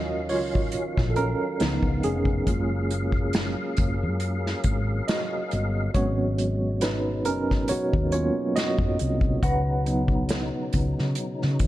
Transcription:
Already playing: fretless electric bass D#2, tonewheel organ D#3 F#3 C#4 F5, tine electric piano F#3 C#4 F4 F#4 A#4 D#5 F5
0.29 fretless electric bass C#2, tine electric piano F4 C#5, open hi-hat
0.55 kick
0.72 muted fretless electric bass stroke, closed hi-hat
0.97 fretless electric bass A#1, kick, snare
1.10 tine electric piano A4
1.16 tine electric piano C#4 A#4, closed hi-hat
1.60 fretless electric bass C#2, tonewheel organ C#3 G#3 B3, tine electric piano F3 B3 D#4, snare, closed hi-hat
1.83 fretless electric bass C#2, kick
2.03 fretless electric bass F1, tine electric piano C#4 G#4, closed hi-hat
2.25 kick
2.46 fretless electric bass F#1, tonewheel organ F#3 G#4 A#4 F5, tine electric piano G#3 A#3 F4, kick, closed hi-hat
2.91 closed hi-hat
3.12 kick
3.33 snare, closed hi-hat
3.77 fretless electric bass F#1, kick, closed hi-hat
4.03 fretless electric bass F#2
4.20 closed hi-hat
4.46 snare
4.64 fretless electric bass G#1, kick, closed hi-hat
5.08 tine electric piano F#4 D#5, snare, closed hi-hat
5.51 fretless electric bass G1, closed hi-hat
5.94 fretless electric bass G#1, tonewheel organ B2 F#3 G#3, tine electric piano F#3 G#3 B3 C#4 F#4 C#5, kick, closed hi-hat
6.38 closed hi-hat
6.81 tine electric piano D#4 B4, snare, closed hi-hat
7.25 fretless electric bass F#1, tine electric piano C#4 A#4, closed hi-hat
7.51 kick, snare
7.68 tine electric piano F#4 C#5, muted fretless electric bass stroke, closed hi-hat
7.93 fretless electric bass D#2, kick
8.12 tine electric piano F#3 A#3 B3 C#4 F4 C#5, closed hi-hat
8.56 tine electric piano F#4 D#5, snare, closed hi-hat
8.79 fretless electric bass F#2, kick
8.99 fretless electric bass C2, closed hi-hat
9.21 kick
9.42 fretless electric bass C#2, tonewheel organ C#3 F#3 D#4, tine electric piano B4 F#5, kick, closed hi-hat
9.86 tine electric piano F#3 B3 D#4, closed hi-hat
10.08 kick
10.29 snare, closed hi-hat
10.73 fretless electric bass C#2, kick, closed hi-hat
10.99 fretless electric bass C#3, snare
11.15 closed hi-hat
11.42 fretless electric bass C#3, snare
11.59 fretless electric bass D#2, kick, closed hi-hat

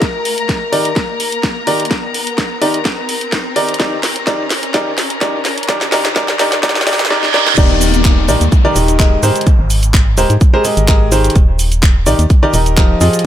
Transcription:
Already playing: string section A#4 A#5, riser
0.02 kick, snare, closed hi-hat
0.25 open hi-hat
0.38 closed hi-hat
0.49 kick, snare, closed hi-hat
0.72 grand piano D#3 D#4 G4 A#4 D5, open hi-hat
0.85 closed hi-hat
0.96 kick, snare, closed hi-hat
1.20 open hi-hat
1.32 closed hi-hat
1.43 kick, snare, closed hi-hat
1.67 grand piano D#3 D#4 G4 A#4 D5, open hi-hat
1.80 closed hi-hat
1.85 closed hi-hat
1.91 kick, snare, closed hi-hat
2.14 open hi-hat
2.27 closed hi-hat
2.38 kick, snare, closed hi-hat
2.62 grand piano D#3 D#4 G4 A#4 D5, open hi-hat
2.74 closed hi-hat
2.85 kick, snare, closed hi-hat
3.09 open hi-hat
3.21 closed hi-hat
3.32 kick, snare, closed hi-hat
3.56 grand piano D#3 D#4 G4 A#4 D5, open hi-hat
3.69 closed hi-hat
3.74 closed hi-hat
3.80 grand piano D#3 D#4 G4 A#4 D5, kick, snare, closed hi-hat
4.03 snare, open hi-hat
4.16 closed hi-hat
4.27 grand piano D#3 D#4 G4 A#4 D5, kick, snare, closed hi-hat
4.50 snare, open hi-hat
4.63 closed hi-hat
4.74 grand piano D#3 D#4 G4 A#4 D5, kick, snare, closed hi-hat
4.98 snare, open hi-hat
5.10 closed hi-hat
5.21 grand piano D#3 D#4 G4 A#4 D5, kick, snare, closed hi-hat
5.45 snare, open hi-hat
5.58 closed hi-hat
5.63 closed hi-hat
5.68 grand piano D#3 D#4 G4 A#4 D5, kick, snare, closed hi-hat
5.81 snare
5.92 grand piano D#3 D#4 G4 A#4 D5, snare, open hi-hat
6.05 snare, closed hi-hat
6.16 grand piano D#3 D#4 G4 A#4 D5, kick, snare, closed hi-hat
6.28 snare
6.39 grand piano D#3 D#4 G4 A#4 D5, snare, open hi-hat
6.52 snare, closed hi-hat
6.63 grand piano D#3 D#4 G4 A#4 D5, kick, snare, closed hi-hat, reverse cymbal
6.69 snare
6.75 snare
6.81 snare
6.87 grand piano D#3 D#4 G4 A#4 D5, snare, open hi-hat
6.93 snare
6.99 snare, closed hi-hat
7.05 snare
7.10 grand piano D#3 D#4 G4 A#4 D5, snare
7.23 snare
7.34 grand piano D#3 D#4 G4 A#4 D5, snare
7.47 snare
7.58 fm bass D#1, grand piano D#3 D#4 G4 A#4 D5, kick, closed hi-hat, crash, downlifter, shaker
7.81 open hi-hat, shaker
7.94 closed hi-hat, shaker
8.05 kick, clap, closed hi-hat, shaker
8.28 fm bass A#1, grand piano D#3 D#4 G4 A#4 D5, open hi-hat, shaker
8.41 fm bass D#2, closed hi-hat, shaker
8.52 kick, closed hi-hat, shaker
8.65 grand piano D#3 D#4 G4 A#4 D5
8.76 fm bass D#1, grand piano D#3 D#4 G4 A#4 D#5, open hi-hat, shaker
8.88 closed hi-hat, shaker
8.99 grand piano G#3 D#4 G4 A#4 D#5, kick, clap, closed hi-hat, shaker
9.23 fm bass G#2, grand piano G#3 G4 G#4 A#4 C5, open hi-hat, shaker
9.36 closed hi-hat, shaker
9.41 closed hi-hat
9.47 kick, closed hi-hat, shaker
9.59 fm bass G#1
9.70 open hi-hat, shaker
9.83 closed hi-hat, shaker
9.94 kick, clap, closed hi-hat, shaker
10.17 fm bass D#1, grand piano G#3 G4 G#4 A#4 C5, open hi-hat, shaker
10.30 fm bass G#2, closed hi-hat, shaker
10.41 kick, closed hi-hat, shaker
10.54 grand piano G#3 G4 G#4 A#4 C5
10.65 grand piano G#3 G4 G#4 A#4 D#5, open hi-hat, shaker
10.77 fm bass G#1, closed hi-hat, shaker
10.88 grand piano G#3 G4 G#4 A#4 D#5, kick, clap, closed hi-hat, shaker
11.12 grand piano D#3 G4 G#4 A#4 C5, open hi-hat, shaker
11.24 closed hi-hat, shaker
11.30 closed hi-hat
11.36 fm bass D#1, kick, closed hi-hat, shaker
11.59 open hi-hat, shaker
11.72 closed hi-hat, shaker
11.83 kick, clap, closed hi-hat, shaker
12.06 fm bass A#1, grand piano D#3 D#4 G4 A#4 D5, open hi-hat, shaker
12.19 fm bass D#2, closed hi-hat, shaker
12.30 kick, closed hi-hat, shaker
12.43 grand piano D#3 D#4 G4 A#4 D5
12.54 fm bass D#1, grand piano D#3 D#4 G4 A#4 D#5, open hi-hat, shaker
12.66 closed hi-hat, shaker
12.77 grand piano F3 D#4 G4 A#4 D#5, kick, clap, closed hi-hat, shaker
13.01 fm bass F2, grand piano F3 F4 G4 G#4 D#5, open hi-hat, shaker
13.13 closed hi-hat, shaker
13.19 closed hi-hat

